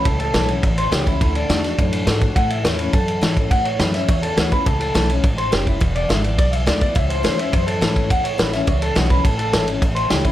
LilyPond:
<<
  \new Staff \with { instrumentName = "Clean electric guitar" } { \time 4/4 \key a \major \tempo 4 = 209 a'8 a'4 r4 c''8 g'8 e'8~ | e'8 d'2. r8 | fis''8 e''8 cis''8 b'8 a'2 | fis''8 cis''8 b'8 e''8 cis''8 a'8 fis'8 b'8 |
a'8 a'4 r4 c''8 g'8 e'8 | r8 d''8 e''8 d''8 d''8 e''8 d''8 d''8 | e''8 c''8 c''8 e''8 c''8 a'4. | fis''8 cis''8 b'8 e''8 cis''8 a'8 fis'8 b'8 |
a'8 a'4 r4 c''8 g'8 e'8 | }
  \new Staff \with { instrumentName = "Steel-string acoustic guitar" } { \time 4/4 \key a \major << { r4 <e a cis' e'>8 <cis' e'>8 r4 <e a cis' e'>8 <cis' e'>8 | r4 <d a d' fis'>8 <d' fis'>8 r4 <d a d' fis'>8 <d' fis'>8 | r4 <e a cis' e'>8 <cis' e'>8 r4 <e a cis' e'>8 <cis' e'>8 | r4 <e a cis' e'>8 <cis' e'>8 r4 <e a cis' e'>8 <cis' e'>8 |
r4 <e a cis' e'>8 <cis' e'>8 r2 | r4 <d gis b e'>8 <b e'>8 r4 <d gis b e'>8 <b e'>8 | r4 <e a cis' e'>8 <cis' e'>8 r4 <e a cis' e'>4 | r4 <e a cis' e'>8 <cis' e'>8 r4 <e a cis' e'>8 <cis' e'>8 |
r4 <e a cis' e'>8 <cis' e'>8 r4 <e a cis' e'>8 <cis' e'>8 | } \\ { a,2 e,2 | d2 a,2 | a,2 e,2 | a,2 e,2 |
a,2 gis,4 fis,4 | e,2 b,2 | a,2 e,2 | a,2 e,2 |
a,2 e,2 | } >> }
  \new Staff \with { instrumentName = "Upright bass" } { \clef bass \time 4/4 \key a \major cis,4 b,,4 a,,4 cis,4 | d,4 e,4 fis,4 gis,4 | a,4 e,4 fis,4 gis,4 | a,4 fis,4 e,4 d,4 |
cis,4 b,,4 a,,4 fis,,4 | e,,4 gis,,4 b,,4 d,4 | cis,4 e,4 fis,4 gis,4 | e,8 r8 a,,4 cis,4 b,,4 |
a,,4 gis,,4 a,,4 cis,4 | }
  \new DrumStaff \with { instrumentName = "Drums" } \drummode { \time 4/4 <bd cymr>8 cymr8 <cymr sn>8 cymr8 <bd cymr>8 cymr8 <cymr sn>8 <bd cymr>8 | <bd cymr>8 cymr8 <cymr sn>8 <cymr sn>8 <bd cymr>8 cymr8 <cymr sn>8 <bd cymr>8 | <bd cymr>8 cymr8 <cymr sn>8 cymr8 <bd cymr>8 cymr8 <cymr sn>8 <bd cymr>8 | <bd cymr>8 cymr8 <cymr sn>8 <cymr sn>8 <bd cymr>8 cymr8 <cymr sn>8 <bd cymr>8 |
<bd cymr>8 cymr8 <cymr sn>8 cymr8 <bd cymr>8 cymr8 <cymr sn>8 <bd cymr>8 | <bd cymr>8 cymr8 <cymr sn>8 cymr8 <bd cymr>8 cymr8 <cymr sn>8 <bd cymr>8 | <bd cymr>8 cymr8 <cymr sn>8 cymr8 <bd cymr>8 cymr8 <cymr sn>8 <bd cymr>8 | <bd cymr>8 cymr8 <cymr sn>8 <cymr sn>8 <bd cymr>8 cymr8 <cymr sn>8 <bd cymr>8 |
<bd cymr>8 cymr8 <cymr sn>8 cymr8 <bd cymr>8 cymr8 <cymr sn>8 <bd cymr>8 | }
>>